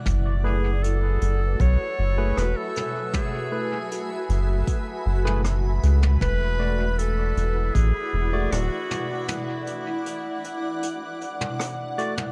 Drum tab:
HH |x---x-x-x---x-x-|x---x-x-x---x-x-|x---x-x-x---x-x-|x-x-x-x-x-x-x-x-|
SD |------------r---|------------r---|------------r---|------------r---|
T2 |o-------------o-|o----------o---o|o-------------o-|o----------o---o|
BD |o-------o-------|o-------o-------|o-------o-------|----------------|